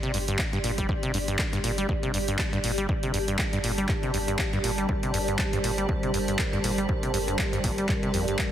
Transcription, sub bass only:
0.14 0.35 G1 medium
0.64 0.85 G1 medium
1.14 1.35 G1 loud
1.64 1.85 G1 loud
2.14 2.35 G1 medium
2.64 2.85 G1 loud
3.14 3.35 G1 loud
3.64 3.85 G1 medium
4.14 4.35 G1 medium
4.64 4.85 G1 loud
5.14 5.35 G1 loud
5.64 5.85 G1 loud
6.14 6.35 G1 medium
6.64 6.85 G1 loud
7.14 7.35 G1 loud
7.64 7.85 G1 loud
8.14 8.35 G1 medium

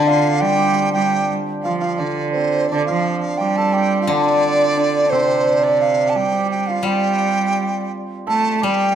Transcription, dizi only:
0.08 0.42 F5 medium
0.41 0.92 G5 loud
0.93 1.33 G5 medium
1.63 1.79 F5 medium
1.79 2.00 F5 medium
1.99 2.32 D5 medium
2.32 2.69 C5 medium
2.68 2.85 D5 medium
2.86 3.19 F5 medium
3.21 3.39 F5 medium
3.38 3.58 G5 medium
3.57 3.75 A5 medium
3.73 4.01 G5 medium
4.02 4.11 F5 medium
4.10 5.11 D5 loud
5.10 5.65 C5 medium
5.64 5.83 D5 medium
5.81 6.11 F5 medium
6.10 6.18 A5 medium
6.16 6.50 G5 medium
6.51 6.69 G5 medium
6.67 6.86 F5 medium
6.85 7.92 G5 medium
8.29 8.56 A5 loud
8.56 8.65 A5 medium
8.64 8.95 G5 loud

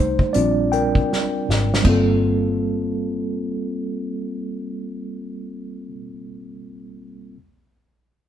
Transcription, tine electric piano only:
0.00 0.34 G3 soft
0.00 0.37 A3 soft
0.00 0.37 D#4 soft
0.00 0.32 C5 medium
0.33 1.43 G3 soft
0.33 1.43 C4 soft
0.33 1.44 D4 medium
0.33 0.70 F4 medium
0.33 0.73 D5 medium
0.72 1.44 A#4 medium
0.72 1.43 G5 medium
1.83 5.86 G3 medium
1.83 5.87 A#3 medium
1.83 5.89 C4 medium
1.87 5.90 F4 medium
1.87 5.92 A4 medium

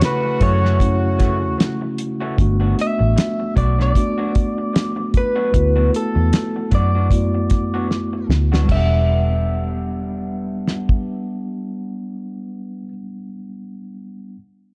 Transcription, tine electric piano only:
0.00 0.20 C#3 medium
0.00 0.20 A3 medium
0.00 0.21 E4 medium
0.00 0.22 F#4 medium
0.79 1.78 A3 medium
0.79 1.78 C#4 medium
0.79 1.79 E4 medium
0.79 1.79 F#4 medium
2.38 3.36 A3 medium
2.38 3.36 B3 medium
2.38 3.37 D4 medium
2.38 3.38 F#4 loud
3.94 4.93 A3 medium
3.94 4.94 B3 medium
3.94 4.94 D4 medium
3.94 4.95 F#4 medium
5.52 6.51 A3 medium
5.52 6.51 B3 medium
5.52 6.52 E4 medium
5.52 6.53 F#4 medium
7.10 8.08 A3 medium
7.10 8.09 B3 medium
7.10 8.10 E4 medium
7.10 8.10 F#4 medium
8.64 12.80 G3 medium
8.68 12.84 B3 medium
8.72 12.89 D4 medium
8.77 12.93 F#5 medium

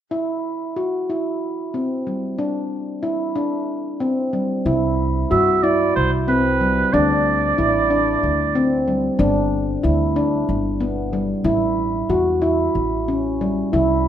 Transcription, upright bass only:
4.66 5.23 C2 medium
5.31 5.89 G2 medium
5.96 6.82 C2 medium
6.94 7.51 D2 medium
7.59 8.15 A1 medium
8.23 9.08 D2 medium
9.19 9.76 G1 medium
9.84 10.41 D2 medium
10.49 11.34 G1 medium
11.44 12.01 A1 medium
12.09 12.67 E2 medium
12.75 13.62 A1 medium
13.73 14.08 C2 medium

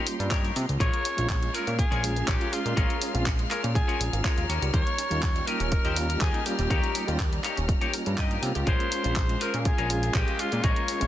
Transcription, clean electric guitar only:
0.19 muted clean electric guitar stroke soft
0.31 0.55 D#4 medium
0.31 0.56 G4 medium
0.31 0.56 A#4 medium
0.31 0.56 C#5 medium
0.80 1.18 F4 loud
0.80 1.18 G#4 loud
0.80 1.18 A#4 loud
0.80 1.18 C#5 loud
1.54 1.67 F4 medium
1.54 1.67 G#4 medium
1.54 1.67 A#4 medium
1.54 1.67 C#5 medium
1.78 muted clean electric guitar stroke soft
1.91 2.03 F4 loud
1.91 2.03 G#4 loud
1.91 2.03 A#4 loud
1.91 2.03 C#5 loud
2.16 muted clean electric guitar stroke soft
2.27 2.52 F4 medium
2.27 2.52 G#4 medium
2.27 2.52 A#4 medium
2.27 2.53 C#5 loud
2.76 3.14 F4 loud
2.76 3.14 G#4 medium
2.76 3.14 A#4 loud
2.76 3.15 C#5 loud
3.50 3.63 F4 medium
3.50 3.63 G#4 medium
3.50 3.64 A#4 medium
3.50 3.64 C#5 medium
3.75 muted clean electric guitar stroke soft
3.88 4.00 F4 loud
3.88 4.00 G#4 loud
3.88 4.00 A#4 loud
3.88 4.00 C#5 loud
4.13 muted clean electric guitar stroke soft
4.24 4.49 F4 medium
4.24 4.49 G#4 medium
4.24 4.48 A#4 medium
4.24 4.48 C#5 medium
4.49 5.28 D#4 medium
4.49 5.28 G4 medium
4.49 5.28 A#4 medium
4.49 5.28 C#5 loud
5.47 5.60 D#4 loud
5.47 5.60 G4 medium
5.47 5.60 A#4 medium
5.47 5.61 D#5 medium
5.72 muted clean electric guitar stroke soft
5.85 5.97 D#4 loud
5.85 5.97 G4 loud
5.85 5.97 A#4 loud
5.85 5.97 C5 loud
6.09 muted clean electric guitar stroke soft
6.21 6.46 D#4 loud
6.21 6.46 G4 medium
6.21 6.46 A#4 medium
6.21 6.46 D#5 medium
6.70 7.08 D#4 loud
6.70 7.08 G4 loud
6.70 7.08 A#4 loud
6.70 7.08 C#5 loud
7.44 7.57 D#4 medium
7.44 7.57 G4 medium
7.44 7.57 A#4 medium
7.44 7.57 C#5 loud
7.68 muted clean electric guitar stroke soft
7.81 7.93 D#4 loud
7.81 7.93 G4 loud
7.81 7.93 A#4 loud
7.81 7.93 C#5 loud
8.06 muted clean electric guitar stroke soft
8.18 8.42 D#4 loud
8.18 8.43 G4 medium
8.18 8.43 A#4 medium
8.18 8.43 D#5 medium
8.67 9.04 F4 loud
8.67 9.04 G#4 medium
8.67 9.05 A#4 loud
8.67 9.05 C#5 loud
9.41 9.54 F4 medium
9.41 9.54 G#4 medium
9.41 9.54 A#4 medium
9.41 9.54 C5 loud
9.66 muted clean electric guitar stroke soft
9.78 9.90 F4 loud
9.78 9.90 G#4 medium
9.78 9.90 A#4 loud
9.78 9.90 C#5 loud
10.03 muted clean electric guitar stroke soft
10.14 10.39 F4 loud
10.14 10.39 G#4 medium
10.14 10.39 A#4 medium
10.14 10.40 D#5 medium
10.64 11.01 F4 loud
10.64 11.01 G#4 loud
10.64 11.01 A#4 loud
10.64 11.02 D#5 loud

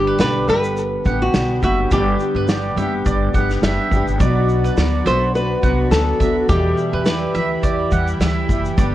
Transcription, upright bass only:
0.19 0.43 B1 medium
0.48 0.95 G1 medium
1.05 1.29 A1 medium
1.34 1.57 B1 medium
1.62 1.86 F#1 medium
1.91 2.15 G1 loud
2.35 2.69 G1 medium
2.76 3.00 F#1 medium
3.06 3.29 G1 medium
3.34 3.58 G1 medium
3.62 3.75 F#1 medium
3.91 4.04 G1 medium
4.07 4.18 G1 medium
4.20 4.67 B1 loud
4.77 5.01 D2 medium
5.06 5.53 B1 medium
5.63 5.87 C2 medium
5.91 6.15 D2 medium
6.20 6.44 D2 medium
6.49 6.72 E2 loud
6.93 7.27 E2 loud
7.35 7.58 D2 medium
7.63 7.87 E2 medium
7.91 8.15 E2 medium
8.20 8.44 D2 medium
8.49 8.72 F#1 medium
8.78 8.95 G1 loud

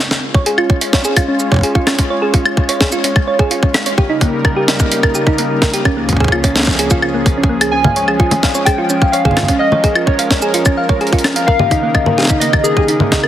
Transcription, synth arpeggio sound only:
0.34 0.44 C#5 medium
0.46 0.55 G#4 loud
0.58 0.67 F4 loud
0.70 0.79 C#4 medium
0.93 1.02 C#5 medium
1.05 1.14 G#4 loud
1.16 1.26 F4 loud
1.28 1.37 C#4 medium
1.52 1.61 C#5 medium
1.63 1.72 G#4 loud
1.75 1.84 F4 loud
1.87 1.96 C#4 medium
2.10 2.19 C#5 medium
2.22 2.31 G#4 loud
2.34 2.43 F4 loud
2.45 2.55 C#4 medium
2.69 2.78 C#5 medium
2.81 2.90 G#4 loud
2.92 3.01 F4 loud
3.04 3.13 C#4 medium
3.27 3.37 C#5 medium
3.39 3.48 G#4 loud
3.51 3.60 F4 loud
3.63 3.72 C#4 medium
3.86 3.95 C#5 medium
3.98 4.07 G4 loud
4.09 4.19 D#4 loud
4.21 4.30 A#3 medium
4.45 4.54 A#4 medium
4.56 4.66 G4 loud
4.68 4.77 D#4 loud
4.80 4.89 A#3 medium
5.03 5.12 A#4 medium
5.15 5.24 G4 loud
5.27 5.36 D#4 loud
5.38 5.48 A#3 medium
5.62 5.71 A#4 medium
5.74 5.83 G4 loud
5.85 5.94 C#4 loud
5.97 6.06 A#3 medium
6.20 6.30 G#4 medium
6.32 6.41 F4 loud
6.44 6.53 C#4 loud
6.56 6.65 A#3 medium
6.79 6.88 G#4 medium
6.91 7.00 F4 loud
7.02 7.08 F4 medium
7.14 7.25 A#3 medium
7.38 7.49 C#4 medium
7.49 7.55 A#3 loud
7.61 7.72 G#4 medium
7.73 7.82 C#4 medium
7.84 7.94 F5 medium
7.96 8.05 C#5 medium
8.08 8.17 G#4 loud
8.20 8.29 F4 loud
8.31 8.40 C#4 medium
8.43 8.52 F5 medium
8.55 8.64 C#5 medium
8.67 8.76 G#4 loud
8.78 8.87 F4 loud
8.90 8.99 C#4 medium
9.02 9.11 F5 medium
9.13 9.22 C#5 medium
9.25 9.34 G#4 loud
9.37 9.46 F4 loud
9.49 9.58 C#4 medium
9.60 9.69 F5 medium
9.72 9.81 C#5 medium
9.84 9.93 G#4 loud
9.95 10.05 F4 loud
10.07 10.16 C#4 medium
10.19 10.28 F5 medium
10.31 10.40 C#5 medium
10.42 10.51 G#4 loud
10.54 10.63 F4 loud
10.66 10.75 C#4 medium
10.77 10.87 F5 medium
10.89 10.98 C#5 medium
11.01 11.10 G#4 loud
11.13 11.22 F4 loud
11.24 11.33 C#4 medium
11.36 11.45 F5 medium
11.48 11.57 A#4 medium
11.59 11.69 G4 loud
11.71 11.80 D#4 loud
11.83 11.92 A#3 medium
11.95 12.04 D#5 medium
12.06 12.15 A#4 medium
12.18 12.27 G4 loud
12.30 12.39 D#4 loud
12.41 12.51 A#3 medium
12.53 12.62 D#5 medium
12.65 12.74 A#4 medium
12.77 12.86 G4 loud
12.88 12.97 D#4 loud
13.00 13.09 A#3 medium
13.12 13.21 D#5 medium
13.24 13.28 A#4 medium

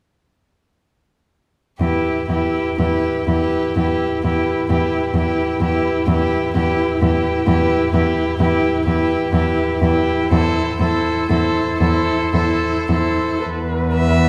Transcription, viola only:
1.81 2.29 E4 soft
2.30 2.78 E4 soft
2.80 3.28 E4 soft
3.29 3.76 E4 soft
3.78 4.24 E4 soft
4.25 4.70 E4 soft
4.71 5.15 E4 soft
5.16 5.61 E4 soft
5.63 6.08 E4 soft
6.10 6.55 E4 soft
6.57 7.02 E4 soft
7.04 7.48 E4 soft
7.49 7.93 E4 soft
7.95 8.40 E4 soft
8.42 8.87 E4 soft
8.88 9.34 E4 soft
9.34 9.82 E4 soft
9.83 10.31 E4 soft
10.32 10.80 E4 soft
10.81 11.29 E4 soft
11.30 11.80 E4 soft
11.82 12.34 E4 soft
12.35 12.90 E4 soft
12.92 13.44 E4 soft
13.45 14.29 B4 soft

